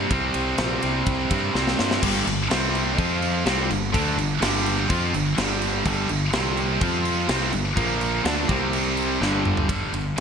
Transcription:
0.00 0.12 G3 medium
0.00 0.11 C4 medium
0.10 0.30 C2 medium
0.10 0.81 C3 medium
0.10 0.82 G3 loud
0.10 0.81 C4 loud
0.10 kick loud
0.10 ride medium
0.34 0.54 C2 medium
0.34 ride medium
0.58 0.78 A#1 loud
0.58 snare loud
0.58 ride loud
0.82 1.02 C2 medium
0.82 1.52 C3 medium
0.82 1.54 G3 medium
0.82 1.53 C4 medium
0.82 ride medium
1.06 1.26 C2 medium
1.06 kick loud
1.06 ride medium
1.30 1.50 G2 medium
1.30 1.54 C3 medium
1.30 1.54 G3 medium
1.30 1.53 C4 medium
1.30 kick medium
1.30 ride medium
1.54 1.74 C2 medium
1.54 2.01 C3 medium
1.54 2.02 G3 medium
1.54 2.03 C4 medium
1.54 snare medium
1.67 snare medium
1.79 1.98 G2 medium
1.79 snare medium
1.91 snare medium
2.02 2.25 G1 medium
2.02 2.25 G2 loud
2.02 2.26 D3 loud
2.02 2.26 G3 loud
2.02 kick medium
2.02 crash loud
2.02 crash medium
2.26 2.49 G1 medium
2.26 2.46 G2 medium
2.26 2.46 D3 medium
2.26 crash medium
2.50 2.95 C2 medium
2.50 2.98 C3 medium
2.50 2.98 G3 loud
2.50 2.98 C4 loud
2.50 snare loud
2.50 crash medium
2.75 crash medium
2.98 3.43 F2 medium
2.98 3.45 F3 medium
2.98 3.45 C4 medium
2.98 3.46 F4 loud
2.98 kick loud
2.98 crash medium
3.22 crash medium
3.46 3.68 C2 loud
3.46 3.69 C3 loud
3.46 3.69 G3 loud
3.46 3.70 C4 loud
3.46 snare loud
3.46 crash medium
3.69 3.92 G1 medium
3.69 3.89 G2 medium
3.69 3.89 D3 medium
3.69 crash medium
3.92 4.17 D2 medium
3.92 4.16 D3 loud
3.92 4.17 A3 loud
3.92 4.17 D4 loud
3.92 kick medium
3.92 crash medium
4.18 4.40 G1 medium
4.18 4.37 G2 medium
4.18 4.37 D3 medium
4.18 crash medium
4.41 4.86 G1 loud
4.41 4.88 G2 loud
4.41 4.89 D3 medium
4.41 4.89 G3 loud
4.41 snare loud
4.41 crash medium
4.66 crash medium
4.89 5.12 F2 medium
4.89 5.13 F3 medium
4.89 5.13 C4 loud
4.89 5.13 F4 loud
4.89 kick loud
4.89 crash medium
5.14 5.36 G1 medium
5.14 5.33 G2 medium
5.14 5.33 D3 medium
5.14 crash medium
5.38 5.82 G1 medium
5.38 5.85 G2 medium
5.38 5.85 D3 loud
5.38 5.85 G3 loud
5.38 snare loud
5.38 crash medium
5.62 crash medium
5.85 6.08 G1 medium
5.85 6.09 G2 loud
5.85 6.09 D3 loud
5.85 6.09 G3 loud
5.85 kick loud
5.85 crash medium
6.09 6.32 G1 medium
6.09 6.29 G2 medium
6.09 6.29 D3 medium
6.09 crash medium
6.33 6.78 C2 medium
6.33 6.80 C3 medium
6.33 6.80 G3 loud
6.33 6.81 C4 loud
6.33 snare loud
6.33 crash medium
6.57 crash medium
6.81 7.26 F2 medium
6.81 7.28 F3 loud
6.81 7.28 C4 medium
6.81 7.28 F4 loud
6.81 kick loud
6.81 crash medium
7.05 crash medium
7.28 7.51 C2 medium
7.28 7.52 C3 medium
7.28 7.52 G3 loud
7.28 7.52 C4 loud
7.28 snare loud
7.28 crash medium
7.52 7.75 G1 medium
7.52 7.71 G2 medium
7.52 7.72 D3 medium
7.52 crash medium
7.76 8.22 A#1 medium
7.76 8.23 A#2 loud
7.76 8.24 F3 loud
7.76 8.24 A#3 loud
7.76 kick loud
7.76 crash medium
8.01 crash medium
8.23 8.47 D2 medium
8.23 8.47 D3 medium
8.23 8.48 A3 medium
8.23 8.48 D4 loud
8.23 snare loud
8.23 crash medium
8.48 9.17 C2 medium
8.48 9.20 C3 medium
8.48 9.20 G3 medium
8.48 9.20 C4 loud
8.48 kick loud
8.48 crash medium
8.73 crash medium
8.97 crash medium
9.20 9.66 G1 loud
9.20 9.67 G2 medium
9.20 9.67 D3 loud
9.20 9.68 G3 medium
9.20 snare medium
9.45 mid tom loud
9.57 floor tom loud
9.68 9.87 G1 medium
9.68 9.91 G2 medium
9.68 9.91 D3 medium
9.68 9.92 G3 medium
9.68 kick loud
9.68 ride medium
9.93 10.11 G1 medium
9.93 10.15 G2 medium
9.93 10.15 D3 medium
9.93 ride medium
10.17 10.20 G1 medium
10.17 10.20 G2 medium

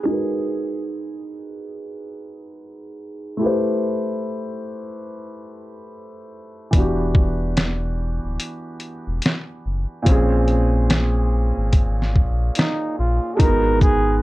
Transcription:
0.03 3.34 G#3 medium
0.03 3.35 D#4 medium
0.08 3.36 F#4 medium
0.08 3.37 A#4 soft
0.12 3.39 B4 medium
3.37 6.68 A3 medium
3.37 6.69 E4 medium
3.42 6.70 G4 medium
3.42 6.71 B4 medium
3.46 6.72 C5 medium
6.71 8.19 E1 loud
6.71 10.01 E3 medium
6.71 10.02 B3 soft
6.71 kick loud
6.71 closed hi-hat medium
6.75 10.03 D4 soft
6.75 10.05 F#4 medium
6.80 10.06 G4 medium
7.15 kick medium
7.57 snare loud
7.57 closed hi-hat medium
8.24 8.38 D1 medium
8.40 closed hi-hat medium
8.80 closed hi-hat soft
9.07 9.21 E1 medium
9.22 snare loud
9.22 closed hi-hat medium
9.65 9.86 F#1 medium
10.02 13.34 A#2 medium
10.02 13.35 F3 medium
10.02 kick medium
10.02 closed hi-hat medium
10.07 11.52 A#1 medium
10.07 13.36 C4 medium
10.07 13.37 C#4 medium
10.11 13.38 G#4 medium
10.48 closed hi-hat soft
10.90 snare loud
10.90 closed hi-hat medium
11.57 12.18 G#1 medium
11.73 kick medium
11.73 closed hi-hat medium
12.02 snare soft
12.16 12.50 A#1 medium
12.16 kick medium
12.55 12.96 D#4 medium
12.55 snare loud
12.55 closed hi-hat medium
12.99 13.19 A#1 medium
12.99 13.36 F4 medium
13.35 14.22 G#3 medium
13.35 13.41 A4 medium
13.39 14.22 G#1 loud
13.39 14.22 D#4 medium
13.39 14.22 F#4 medium
13.39 13.81 A#4 loud
13.39 kick loud
13.39 closed hi-hat medium
13.43 14.22 B3 medium
13.43 14.22 A#4 medium
13.81 14.18 G#4 loud
13.81 kick medium
13.81 shaker soft
14.18 14.22 G#4 medium

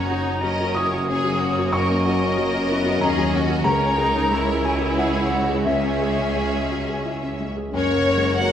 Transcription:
0.00 2.98 F#1 medium
0.00 1.70 F#2 medium
0.00 2.97 F#2 medium
0.00 3.62 F#3 medium
0.00 0.20 C#4 soft
0.00 3.62 C#4 medium
0.00 0.38 F#4 medium
0.00 0.38 C#5 medium
0.00 0.71 A#5 medium
0.00 0.79 A#5 medium
0.09 0.42 D#4 medium
0.09 0.36 F#4 medium
0.27 0.53 C#4 medium
0.41 0.70 F#3 medium
0.41 1.08 C#4 medium
0.41 1.06 A#4 medium
0.41 0.75 D#5 medium
0.61 0.86 F#4 medium
0.75 0.92 E4 soft
0.75 1.09 C#5 medium
0.75 1.68 D#6 loud
0.75 1.75 D#6 medium
0.92 1.18 F#4 medium
1.08 2.36 A#3 medium
1.08 1.35 C#4 medium
1.08 1.40 G#4 medium
1.08 1.72 C#5 medium
1.25 1.50 F#3 medium
1.40 1.67 C#4 medium
1.40 1.72 F#4 medium
1.58 1.83 F#4 medium
1.72 2.98 F#2 medium
1.72 2.04 A#4 medium
1.72 3.66 D#5 medium
1.72 2.98 C#6 medium
1.72 2.75 C#6 medium
1.90 2.15 C#4 medium
2.05 2.31 F#4 medium
2.05 3.01 A#4 medium
2.23 2.48 C#4 medium
2.37 2.64 F#3 medium
2.37 2.69 A#3 medium
2.54 2.80 F#4 medium
2.70 3.02 B3 medium
2.70 2.86 E4 medium
2.85 3.11 F#4 medium
3.01 3.64 D#2 medium
3.01 3.65 D#2 medium
3.01 3.27 C#4 medium
3.01 3.65 C#4 medium
3.01 3.34 G#4 medium
3.01 3.31 A#5 medium
3.01 3.32 A#5 medium
3.18 3.43 F#3 medium
3.33 3.59 C#4 medium
3.33 3.66 F#4 medium
3.49 3.65 F#4 medium
3.64 5.62 C#2 medium
3.64 7.54 C#2 medium
3.64 7.37 G#3 medium
3.64 3.98 C#4 medium
3.64 7.37 C#4 medium
3.64 4.98 A#4 medium
3.64 4.30 C#5 medium
3.64 4.59 A#5 loud
3.64 4.67 A#5 loud
3.80 4.07 C#4 medium
3.98 4.31 D#4 medium
3.98 4.24 G#4 medium
4.14 4.41 C#4 medium
4.31 4.58 G#3 medium
4.31 5.67 E4 medium
4.31 4.63 C#5 medium
4.47 4.74 G#4 medium
4.64 4.82 F#4 soft
4.64 5.64 C#5 medium
4.64 4.96 G#5 medium
4.64 5.00 G#5 medium
4.81 5.08 G#4 medium
4.97 5.25 E4 medium
4.97 5.32 G#4 medium
4.97 5.62 F#5 medium
4.97 5.65 F#5 medium
5.14 5.42 C#4 medium
5.31 5.59 G#3 soft
5.31 5.67 F#4 medium
5.49 5.77 G#4 soft
5.66 7.70 C#2 medium
5.66 7.50 C#4 medium
5.66 7.54 G#4 medium
5.66 7.01 E5 medium
5.66 7.02 E5 medium
5.66 7.50 E5 medium
5.84 6.12 C#4 soft
6.01 6.29 G#4 medium
6.19 6.47 C#4 soft
6.36 6.64 G#3 soft
6.54 6.81 G#4 soft
6.71 6.88 F#4 soft
6.89 7.16 G#4 soft
7.06 7.33 E4 soft
7.23 7.51 C#4 soft
7.40 7.67 G#3 soft
7.56 7.74 G#4 soft
7.73 8.52 F#1 medium
7.73 8.52 F#2 medium
7.73 7.89 G#3 medium
7.73 8.36 C#4 medium
7.73 8.52 F#4 medium
7.73 8.43 A#4 medium
7.73 8.38 C#5 loud
7.93 8.08 A#3 medium
7.97 8.32 C#3 soft
8.10 8.25 G#3 medium
8.17 8.52 G#3 medium
8.26 8.41 A#3 medium
8.40 8.52 G#3 medium
8.40 8.52 A#3 medium
8.40 8.52 F#4 medium
8.40 8.52 A#4 medium
8.40 8.52 C#5 medium
8.40 8.52 F#5 loud

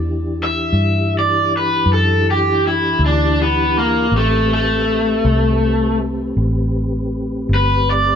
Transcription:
0.00 0.70 E2 medium
0.00 4.08 E3 medium
0.00 4.08 D4 medium
0.00 4.07 E4 medium
0.00 4.07 G4 medium
0.43 1.13 E5 medium
0.73 1.82 G2 medium
1.19 1.51 D5 medium
1.57 1.90 B4 medium
1.86 2.95 F#2 medium
1.93 2.26 A4 medium
2.31 2.64 G4 medium
2.67 3.01 E4 medium
2.99 4.08 D2 medium
3.06 3.39 D4 medium
3.42 3.76 B3 medium
3.79 4.13 A#3 medium
4.11 5.21 A1 medium
4.11 8.15 A3 medium
4.11 8.15 C4 medium
4.11 8.15 G4 medium
4.11 8.15 B4 medium
4.17 4.51 A3 medium
4.54 5.98 A3 medium
5.25 6.34 C2 medium
6.37 7.46 A1 medium
7.49 8.15 G1 medium
7.54 7.88 B4 loud
7.90 8.15 D5 medium

